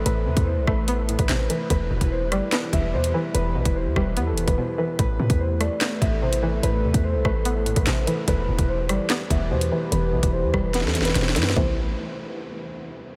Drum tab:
HH |x--------x--------------x-----x--x--x-----x-----|x--------x--------x-----x-----x--------x--------|x--------x--------------x-----x--x--------------|x--------x--------x-----x-----x--------x--------|
CP |------------------------------------x-----------|------------------------x-----------------------|------------------------------------------------|------------------------x-----------------------|
SD |------------------r-----------------o-----------|------------------r-----o-----------------------|------------------r-----------------------------|------------------r-----o-----------------------|
FT |------------------------------------------------|------------------------------------------------|------------------------------------------------|------------------------------------------------|
BD |---------o--------o--------------o--------------|o--------o--------------------o-----------------|---------o--------o--------------o--------------|o--------o--------------------o-----------------|

HH |x--------x--------------x-----x--x--x-----x-----|x--------x--------x-----x-----x--------x--------|x--------x--------------x-----x--x--x-----x-----|------------------------------------------------|
CP |------------------------------------x-----------|------------------------x-----------------------|------------------------------------------------|------------------------------------------------|
SD |------------------r-----------------o-----------|------------------r-----o-----------------------|------------------r-----o-o-o-o-o-o-o-o-o-o-o-o-|------------------------------------------------|
FT |------------------------------------------------|------------------------------------------------|------------------------------------------------|o-----------------------------------------------|
BD |---------o--------o--------------o--------------|o--------o--------------------o-----------------|---------o--------o-----------------------------|o-----------------------------------------------|